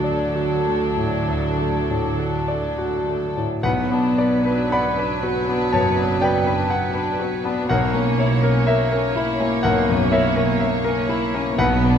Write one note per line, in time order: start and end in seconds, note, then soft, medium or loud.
0.00 1.26 D2 soft
0.00 3.44 D2 soft
0.00 0.97 A2 soft
0.00 3.44 D3 soft
0.00 3.44 F#3 soft
0.00 0.67 A3 soft
0.00 3.45 D4 soft
0.00 0.24 F#4 soft
0.00 3.40 A4 soft
0.00 0.04 D5 soft
0.04 0.55 D5 soft
0.35 0.86 F#4 soft
0.67 1.17 A3 soft
0.97 1.48 A2 soft
1.28 3.59 D2 soft
1.59 2.08 A3 soft
1.89 2.37 A2 soft
2.19 2.66 F#4 soft
2.48 2.96 D5 soft
2.78 3.26 F#4 soft
3.07 3.53 A3 soft
3.36 3.64 A2 soft
3.63 4.54 B1 soft
3.63 5.68 B1 soft
3.63 4.54 B2 soft
3.63 7.64 F#3 soft
3.63 3.88 B3 soft
3.63 7.64 B4 soft
3.63 4.44 B4 soft
3.63 4.67 F#5 medium
3.91 4.35 B3 soft
3.91 4.18 D4 soft
4.18 4.45 B3 soft
4.18 4.62 D5 soft
4.45 4.72 D4 soft
4.45 4.88 B4 soft
4.72 4.98 B3 soft
4.72 5.69 D5 soft
4.72 5.13 F#5 soft
4.72 5.68 B5 medium
4.99 5.23 D4 soft
4.99 5.38 B4 soft
5.23 5.48 B3 soft
5.23 5.62 F#4 soft
5.48 5.88 B3 soft
5.48 5.73 D4 soft
5.72 6.54 F#1 soft
5.72 6.54 F#2 soft
5.72 6.12 F#2 soft
5.72 5.96 B3 soft
5.72 6.19 C#5 soft
5.72 6.18 A5 medium
5.97 6.36 B3 soft
5.97 6.22 D4 soft
6.21 6.47 B3 soft
6.21 6.45 B4 soft
6.21 6.60 D5 soft
6.21 7.64 G5 medium
6.46 6.71 D4 soft
6.46 6.85 B4 soft
6.70 6.95 B3 soft
6.70 7.09 F#5 soft
6.94 7.20 D4 soft
6.94 7.33 B4 soft
7.19 7.44 B3 soft
7.19 7.58 F#4 soft
7.45 7.69 B3 soft
7.45 7.69 D4 soft
7.69 8.51 B1 soft
7.69 9.60 B1 soft
7.69 8.50 B2 soft
7.69 11.55 A#3 medium
7.69 7.92 A#3 soft
7.69 8.42 A#4 soft
7.69 11.55 C#5 soft
7.69 8.63 F#5 medium
7.94 8.33 A#3 soft
7.94 8.19 C#4 soft
8.19 8.43 E4 soft
8.19 8.57 C#5 soft
8.43 8.67 C#4 soft
8.43 8.67 A#4 soft
8.67 8.91 A#3 soft
8.67 8.90 A#4 soft
8.67 9.59 E5 medium
8.92 9.15 C#4 soft
8.92 9.30 A#4 soft
9.16 9.54 E4 soft
9.16 9.40 E4 soft
9.40 9.79 A#3 soft
9.40 9.64 C#4 soft
9.63 10.44 B1 medium
9.63 11.55 B1 soft
9.63 10.45 B2 medium
9.63 9.87 A#3 soft
9.63 10.09 A#4 soft
9.63 10.08 F#5 medium
9.89 10.27 F#2 soft
9.89 10.12 C#4 soft
10.12 10.37 E4 soft
10.12 10.35 A#4 soft
10.12 10.51 C#5 soft
10.12 10.59 E5 medium
10.36 10.61 C#4 soft
10.36 10.75 A#4 soft
10.60 10.85 A#3 soft
10.60 10.99 E5 medium
10.85 11.09 C#4 soft
10.85 11.24 A#4 soft
11.09 11.49 E4 soft
11.09 11.34 E4 soft
11.34 11.59 A#3 soft
11.34 11.59 C#4 soft
11.58 11.98 B1 soft
11.58 11.98 B1 medium
11.58 11.98 B2 medium
11.58 11.98 B3 medium
11.58 11.83 B3 soft
11.58 11.98 B4 medium
11.58 11.98 B4 soft
11.58 11.98 F#5 medium
11.84 11.98 B3 soft
11.84 11.98 D4 soft